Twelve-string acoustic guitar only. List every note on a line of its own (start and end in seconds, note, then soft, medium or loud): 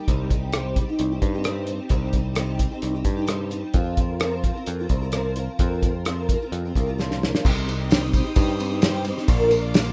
0.08 0.30 C3 medium
0.08 0.29 G3 medium
0.08 0.30 C4 medium
0.08 0.30 D#4 medium
0.08 0.31 G4 medium
0.30 0.53 G3 medium
0.30 0.53 C4 medium
0.30 0.54 D#4 medium
0.30 0.53 G4 medium
0.53 0.76 C3 medium
0.53 0.76 G3 medium
0.53 0.76 C4 medium
0.53 0.77 D#4 medium
0.53 0.77 G4 medium
0.77 0.88 G3 medium
0.77 0.88 C4 medium
0.77 0.88 D#4 medium
0.77 0.87 G4 medium
0.89 1.12 C4 soft
0.89 1.11 D#4 soft
0.89 1.10 G4 medium
1.12 1.21 C4 soft
1.12 1.23 D#4 soft
1.12 1.22 G4 medium
1.22 1.33 G3 medium
1.22 1.33 C4 medium
1.22 1.34 D#4 medium
1.22 1.33 G4 medium
1.34 1.45 C4 soft
1.34 1.45 D#4 soft
1.34 1.45 G4 medium
1.45 1.68 C3 medium
1.45 1.66 G3 medium
1.45 1.68 C4 medium
1.45 1.68 D#4 medium
1.45 1.69 G4 medium
1.67 1.91 G3 medium
1.67 1.92 C4 medium
1.67 1.92 D#4 medium
1.67 1.92 G4 medium
1.92 2.14 C3 medium
1.92 2.13 G3 medium
1.92 2.14 C4 medium
1.92 2.15 D#4 medium
1.92 2.15 G4 medium
2.14 2.36 G3 medium
2.14 2.36 C4 medium
2.14 2.37 D#4 medium
2.14 2.37 G4 medium
2.36 2.60 C3 medium
2.36 2.57 G3 medium
2.36 2.59 C4 medium
2.36 2.60 D#4 medium
2.36 2.60 G4 medium
2.59 2.71 G3 medium
2.59 2.72 C4 medium
2.59 2.72 D#4 medium
2.59 2.70 G4 medium
2.71 2.95 C4 soft
2.71 2.95 D#4 soft
2.71 2.93 G4 medium
2.94 3.06 C4 soft
2.94 3.07 D#4 soft
2.94 3.06 G4 soft
3.05 3.17 G3 medium
3.05 3.18 C4 medium
3.05 3.17 D#4 medium
3.05 3.15 G4 medium
3.16 3.26 C4 soft
3.16 3.27 D#4 medium
3.16 3.27 G4 medium
3.26 3.51 C3 medium
3.26 3.49 G3 medium
3.26 3.50 C4 medium
3.26 3.51 D#4 medium
3.26 3.52 G4 medium
3.50 3.74 G3 medium
3.50 3.74 C4 medium
3.50 3.75 D#4 medium
3.50 3.76 G4 medium
3.75 3.97 F3 medium
3.75 3.98 C4 medium
3.75 3.98 F4 medium
3.75 3.99 A#4 medium
3.98 4.20 F3 medium
3.98 4.21 C4 medium
3.98 4.21 F4 medium
3.98 4.22 A#4 medium
4.21 4.41 F3 medium
4.21 4.42 C4 medium
4.21 4.43 F4 medium
4.21 4.44 A#4 medium
4.43 4.55 F3 medium
4.43 4.55 C4 medium
4.43 4.55 F4 medium
4.43 4.54 A#4 medium
4.55 4.80 C4 soft
4.55 4.79 F4 soft
4.55 4.78 A#4 medium
4.79 4.90 C4 soft
4.79 4.90 F4 soft
4.79 4.91 A#4 soft
4.90 5.02 F3 medium
4.90 5.02 C4 medium
4.90 5.03 F4 medium
4.90 5.01 A#4 medium
5.02 5.13 C4 soft
5.02 5.14 F4 soft
5.02 5.13 A#4 medium
5.13 5.35 F3 medium
5.13 5.36 C4 medium
5.13 5.37 F4 medium
5.13 5.37 A#4 medium
5.36 5.59 F3 medium
5.36 5.60 C4 medium
5.36 5.60 F4 medium
5.36 5.61 A#4 medium
5.60 5.80 F3 medium
5.60 5.81 C4 medium
5.60 5.83 F4 medium
5.60 5.83 A#4 medium
5.81 6.05 F3 medium
5.81 6.05 C4 medium
5.81 6.06 F4 medium
5.81 6.06 A#4 medium
6.06 6.29 F3 medium
6.06 6.29 C4 medium
6.06 6.30 F4 medium
6.06 6.30 A#4 medium
6.30 6.41 F3 medium
6.30 6.41 C4 medium
6.30 6.42 F4 medium
6.30 6.41 A#4 medium
6.42 6.66 C4 soft
6.42 6.65 F4 medium
6.42 6.63 A#4 medium
6.65 6.76 C4 soft
6.65 6.76 F4 soft
6.65 6.76 A#4 soft
6.76 6.87 F3 medium
6.76 6.87 C4 medium
6.76 6.87 F4 medium
6.76 6.85 A#4 medium
6.86 6.98 C4 soft
6.86 6.99 F4 medium
6.86 6.98 A#4 soft
6.98 7.21 F3 medium
6.98 7.22 C4 medium
6.98 7.22 F4 medium
6.98 7.23 A#4 medium
7.22 7.45 F3 medium
7.22 7.45 C4 medium
7.22 7.46 F4 medium
7.22 7.46 A#4 medium
7.44 7.67 C3 medium
7.44 7.66 G3 medium
7.44 7.67 C4 medium
7.44 7.68 D#4 medium
7.44 7.68 G4 medium
7.67 7.89 G3 medium
7.67 7.90 C4 medium
7.67 7.90 D#4 medium
7.67 7.91 G4 medium
7.89 8.01 C3 medium
7.89 8.02 G3 medium
7.89 8.02 C4 medium
7.89 8.02 D#4 medium
7.89 8.01 G4 medium
8.02 8.14 C4 soft
8.02 8.14 D#4 medium
8.02 8.13 G4 medium
8.13 8.25 G3 medium
8.13 8.25 C4 medium
8.13 8.25 D#4 medium
8.13 8.22 G4 medium
8.23 8.48 C4 soft
8.23 8.47 D#4 medium
8.23 8.46 G4 medium
8.47 8.57 C4 soft
8.47 8.58 D#4 medium
8.47 8.59 G4 medium
8.58 8.70 G3 medium
8.58 8.70 C4 medium
8.58 8.71 D#4 medium
8.58 8.70 G4 medium
8.71 8.82 C4 medium
8.71 8.83 D#4 medium
8.71 8.82 G4 medium
8.82 9.05 C3 medium
8.82 9.04 G3 medium
8.82 9.06 C4 medium
8.82 9.06 D#4 medium
8.82 9.06 G4 loud
9.05 9.16 G3 medium
9.05 9.17 C4 medium
9.05 9.17 D#4 medium
9.05 9.15 G4 medium
9.17 9.28 C4 soft
9.17 9.29 D#4 medium
9.17 9.28 G4 medium
9.28 9.51 A#2 medium
9.28 9.51 D3 medium
9.28 9.49 F3 medium
9.28 9.50 A#3 medium
9.28 9.51 D4 medium
9.28 9.52 A#4 medium
9.50 9.74 F3 medium
9.50 9.74 A#3 medium
9.50 9.75 D4 medium
9.50 9.75 A#4 medium
9.75 9.86 A#2 medium
9.75 9.86 D3 medium
9.75 9.87 F3 medium
9.75 9.86 A#3 medium
9.75 9.85 D4 medium
9.75 9.84 A#4 medium
9.86 9.93 F3 soft
9.86 9.93 A#3 medium
9.86 9.93 D4 medium
9.86 9.93 A#4 medium